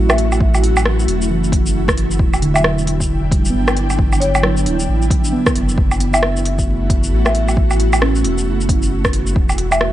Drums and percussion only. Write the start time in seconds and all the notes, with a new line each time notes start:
0.10 cross-stick, low woodblock, shaker
0.18 open hi-hat
0.32 low woodblock, shaker
0.41 kick
0.55 low woodblock, shaker
0.64 open hi-hat
0.77 low woodblock, shaker
0.85 cross-stick
0.99 shaker
1.08 open hi-hat
1.22 shaker
1.44 shaker
1.52 kick, open hi-hat
1.66 shaker
1.88 kick, cross-stick, shaker
1.98 open hi-hat
2.11 shaker
2.19 kick
2.34 low woodblock, shaker
2.42 open hi-hat
2.56 low woodblock, shaker
2.64 cross-stick
2.78 shaker
2.87 open hi-hat
3.00 kick, shaker
3.31 kick, open hi-hat
3.45 shaker
3.68 cross-stick, low woodblock, shaker
3.77 open hi-hat
3.90 low woodblock, shaker
3.99 kick
4.13 low woodblock, shaker
4.22 open hi-hat
4.35 low woodblock, shaker
4.43 cross-stick
4.57 shaker
4.66 open hi-hat
4.80 shaker
5.02 shaker
5.10 kick, open hi-hat
5.25 shaker
5.46 kick, cross-stick, shaker
5.56 open hi-hat
5.69 shaker
5.78 kick
5.91 low woodblock, shaker
6.00 open hi-hat
6.14 low woodblock, shaker
6.23 cross-stick
6.36 shaker
6.45 open hi-hat
6.58 kick, shaker
6.90 kick, open hi-hat
7.04 shaker
7.26 cross-stick, low woodblock, shaker
7.35 open hi-hat
7.49 low woodblock, shaker
7.57 kick
7.71 low woodblock, shaker
7.80 open hi-hat
7.93 low woodblock, shaker
8.02 cross-stick
8.15 shaker
8.24 open hi-hat
8.38 shaker
8.61 shaker
8.69 kick, open hi-hat
8.83 shaker
9.05 kick, cross-stick, shaker
9.13 open hi-hat
9.27 shaker
9.36 kick
9.49 low woodblock, shaker
9.58 open hi-hat
9.72 low woodblock, shaker
9.81 cross-stick